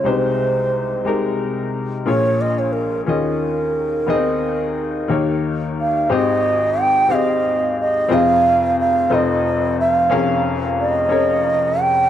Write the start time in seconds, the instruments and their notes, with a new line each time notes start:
Already playing: bansuri C#5
0.04 upright piano C2 C3 G#3 D#4 G4 C5
0.09 bansuri C5
1.05 upright piano G#3 D#4 G4 A#4
2.06 upright piano A#1 A#2 A#3 F4 G#4 C#5, bansuri C#5
2.41 bansuri D#5
2.59 bansuri C#5
2.72 bansuri A#4
3.06 upright piano D#2 D#3 C#4 F4 G#4 D#5, bansuri A#4
4.07 upright piano D#2 D#3 B3 D#4 G#4 D#5
4.13 upright piano C4
5.08 upright piano D#2 D#3 A#3 D#4 G4 C#5
5.81 bansuri F5
6.09 upright piano G#1 G#2 C4 G4 G#4 D#5
6.15 bansuri D#5
6.81 bansuri G5
7.09 upright piano C4 G4 G#4 F5
7.15 bansuri D#5
7.81 bansuri D#5
8.09 upright piano F1 F2 C4 F4 G#4 D#5
8.14 bansuri F5
8.80 bansuri F5
9.10 upright piano F1 F2 C4 F4 A4 D#5
9.14 bansuri D#5
9.80 bansuri F5
10.10 upright piano F1 F2 C#4 G#4 A#4 F5
10.80 bansuri D#5
11.09 upright piano C#4 G#4 A#4 C#5
11.81 bansuri G5